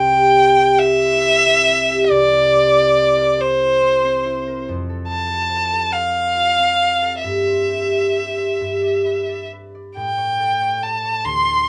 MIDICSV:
0, 0, Header, 1, 3, 480
1, 0, Start_track
1, 0, Key_signature, 0, "major"
1, 0, Tempo, 891530
1, 1138, Tempo, 855920
1, 1139, Time_signature, 6, 3, 24, 8
1, 2578, Tempo, 831025
1, 3538, Tempo, 902256
1, 5458, Tempo, 848656
1, 6438, End_track
2, 0, Start_track
2, 0, Title_t, "Violin"
2, 0, Program_c, 0, 40
2, 0, Note_on_c, 0, 79, 77
2, 425, Note_on_c, 0, 76, 95
2, 433, Note_off_c, 0, 79, 0
2, 1134, Note_on_c, 0, 74, 85
2, 1142, Note_off_c, 0, 76, 0
2, 1866, Note_on_c, 0, 72, 82
2, 1875, Note_off_c, 0, 74, 0
2, 2584, Note_off_c, 0, 72, 0
2, 2809, Note_on_c, 0, 81, 74
2, 3298, Note_on_c, 0, 77, 78
2, 3306, Note_off_c, 0, 81, 0
2, 3998, Note_off_c, 0, 77, 0
2, 4002, Note_on_c, 0, 76, 53
2, 5195, Note_off_c, 0, 76, 0
2, 5466, Note_on_c, 0, 79, 70
2, 5956, Note_on_c, 0, 81, 61
2, 5965, Note_off_c, 0, 79, 0
2, 6191, Note_on_c, 0, 84, 73
2, 6200, Note_off_c, 0, 81, 0
2, 6438, Note_off_c, 0, 84, 0
2, 6438, End_track
3, 0, Start_track
3, 0, Title_t, "Harp"
3, 0, Program_c, 1, 46
3, 0, Note_on_c, 1, 36, 58
3, 0, Note_on_c, 1, 55, 41
3, 0, Note_on_c, 1, 72, 46
3, 183, Note_off_c, 1, 72, 0
3, 189, Note_on_c, 1, 72, 34
3, 292, Note_off_c, 1, 55, 0
3, 312, Note_on_c, 1, 67, 40
3, 426, Note_on_c, 1, 64, 42
3, 542, Note_off_c, 1, 72, 0
3, 548, Note_on_c, 1, 72, 47
3, 660, Note_off_c, 1, 64, 0
3, 666, Note_on_c, 1, 64, 39
3, 789, Note_on_c, 1, 60, 41
3, 900, Note_off_c, 1, 64, 0
3, 907, Note_on_c, 1, 64, 45
3, 1017, Note_off_c, 1, 67, 0
3, 1024, Note_on_c, 1, 67, 48
3, 1128, Note_off_c, 1, 36, 0
3, 1135, Note_on_c, 1, 36, 64
3, 1257, Note_on_c, 1, 70, 42
3, 1364, Note_off_c, 1, 72, 0
3, 1370, Note_on_c, 1, 72, 49
3, 1478, Note_off_c, 1, 70, 0
3, 1485, Note_on_c, 1, 70, 38
3, 1603, Note_off_c, 1, 72, 0
3, 1610, Note_on_c, 1, 72, 43
3, 1722, Note_off_c, 1, 70, 0
3, 1729, Note_on_c, 1, 70, 46
3, 1842, Note_off_c, 1, 64, 0
3, 1849, Note_on_c, 1, 64, 50
3, 1967, Note_off_c, 1, 72, 0
3, 1974, Note_on_c, 1, 72, 44
3, 2093, Note_off_c, 1, 64, 0
3, 2100, Note_on_c, 1, 64, 46
3, 2213, Note_off_c, 1, 60, 0
3, 2220, Note_on_c, 1, 60, 45
3, 2330, Note_off_c, 1, 64, 0
3, 2336, Note_on_c, 1, 64, 43
3, 2455, Note_off_c, 1, 70, 0
3, 2462, Note_on_c, 1, 70, 45
3, 2580, Note_on_c, 1, 41, 54
3, 2596, Note_off_c, 1, 36, 0
3, 2596, Note_off_c, 1, 64, 0
3, 2599, Note_off_c, 1, 67, 0
3, 2599, Note_off_c, 1, 70, 0
3, 2702, Note_on_c, 1, 69, 39
3, 2820, Note_off_c, 1, 72, 0
3, 2827, Note_on_c, 1, 72, 39
3, 2929, Note_off_c, 1, 69, 0
3, 2936, Note_on_c, 1, 69, 39
3, 3044, Note_off_c, 1, 72, 0
3, 3051, Note_on_c, 1, 72, 32
3, 3175, Note_off_c, 1, 69, 0
3, 3182, Note_on_c, 1, 69, 34
3, 3298, Note_on_c, 1, 65, 40
3, 3414, Note_off_c, 1, 72, 0
3, 3421, Note_on_c, 1, 72, 38
3, 3547, Note_off_c, 1, 65, 0
3, 3554, Note_on_c, 1, 65, 33
3, 3663, Note_off_c, 1, 60, 0
3, 3670, Note_on_c, 1, 60, 30
3, 3771, Note_off_c, 1, 65, 0
3, 3891, Note_off_c, 1, 69, 0
3, 3897, Note_on_c, 1, 69, 34
3, 4014, Note_on_c, 1, 43, 42
3, 4028, Note_off_c, 1, 41, 0
3, 4033, Note_off_c, 1, 69, 0
3, 4132, Note_off_c, 1, 72, 0
3, 4138, Note_on_c, 1, 72, 33
3, 4254, Note_on_c, 1, 67, 32
3, 4372, Note_off_c, 1, 72, 0
3, 4379, Note_on_c, 1, 72, 24
3, 4496, Note_off_c, 1, 67, 0
3, 4502, Note_on_c, 1, 67, 27
3, 4613, Note_off_c, 1, 72, 0
3, 4620, Note_on_c, 1, 72, 32
3, 4735, Note_off_c, 1, 43, 0
3, 4742, Note_on_c, 1, 43, 37
3, 4753, Note_off_c, 1, 72, 0
3, 4756, Note_off_c, 1, 60, 0
3, 4853, Note_on_c, 1, 74, 30
3, 4976, Note_on_c, 1, 71, 28
3, 5098, Note_off_c, 1, 74, 0
3, 5104, Note_on_c, 1, 74, 30
3, 5226, Note_off_c, 1, 71, 0
3, 5232, Note_on_c, 1, 71, 29
3, 5343, Note_off_c, 1, 74, 0
3, 5349, Note_on_c, 1, 74, 27
3, 5465, Note_on_c, 1, 45, 45
3, 5484, Note_off_c, 1, 74, 0
3, 5486, Note_off_c, 1, 71, 0
3, 5487, Note_off_c, 1, 43, 0
3, 5582, Note_on_c, 1, 73, 35
3, 5711, Note_on_c, 1, 69, 32
3, 5823, Note_off_c, 1, 73, 0
3, 5829, Note_on_c, 1, 73, 32
3, 5948, Note_off_c, 1, 69, 0
3, 5955, Note_on_c, 1, 69, 26
3, 6068, Note_off_c, 1, 73, 0
3, 6075, Note_on_c, 1, 73, 32
3, 6191, Note_on_c, 1, 38, 46
3, 6208, Note_off_c, 1, 45, 0
3, 6209, Note_off_c, 1, 73, 0
3, 6212, Note_off_c, 1, 67, 0
3, 6305, Note_on_c, 1, 74, 36
3, 6432, Note_off_c, 1, 69, 0
3, 6438, Note_off_c, 1, 38, 0
3, 6438, Note_off_c, 1, 74, 0
3, 6438, End_track
0, 0, End_of_file